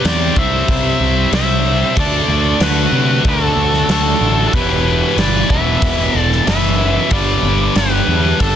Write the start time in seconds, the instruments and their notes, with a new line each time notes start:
Already playing: distorted electric guitar C3 G3 C4
0.05 picked electric bass E2, lead electric guitar G4 D5, snare, crash
0.35 picked electric bass C2, distorted electric guitar C3 G3 C4, lead electric guitar C5 E5, kick
0.68 picked electric bass C2, kick, crash
1.00 picked electric bass C2
1.32 picked electric bass C2, distorted electric guitar C3 G3 C4, lead electric guitar C5 E5, snare, crash
1.96 picked electric bass D2, distorted electric guitar D3 A3, lead electric guitar A4 D5, kick, crash
2.00 distorted electric guitar D4
2.28 picked electric bass D2
2.60 picked electric bass D2, lead electric guitar F#4 B4, snare, crash
2.92 picked electric bass C3, distorted electric guitar A3 D4
2.96 distorted electric guitar D3
3.25 picked electric bass D2, lead electric guitar F#4, kick, crash
3.29 lead electric guitar A4
3.56 picked electric bass D2
3.74 snare
3.88 picked electric bass D2, distorted electric guitar D3 A3, lead electric guitar F#4 A4, snare, crash
3.92 distorted electric guitar D4
4.21 picked electric bass A1
4.47 lead electric guitar F#4 A4
4.52 picked electric bass E1, distorted electric guitar E2 B2 E3, lead electric guitar G4 B4, kick, crash
5.17 picked electric bass G1, lead electric guitar B4 D5, snare, crash
5.49 picked electric bass E1, distorted electric guitar E2 B2 E3, lead electric guitar B4 E5, kick
5.82 picked electric bass E1, kick, crash
6.14 picked electric bass E1, lead electric guitar A4
6.21 lead electric guitar D5
6.32 snare
6.45 picked electric bass F#1, distorted electric guitar E2 B2, lead electric guitar B4 E5, snare, crash
6.50 distorted electric guitar E3
7.11 picked electric bass G1, distorted electric guitar G2 D3 G3, lead electric guitar B4 D5, kick, crash
7.43 picked electric bass G1
7.75 picked electric bass G1, lead electric guitar G4 B4, snare, crash
8.08 picked electric bass E2, distorted electric guitar D3 G3
8.12 distorted electric guitar G2
8.40 picked electric bass G1, lead electric guitar D4 A4, kick, crash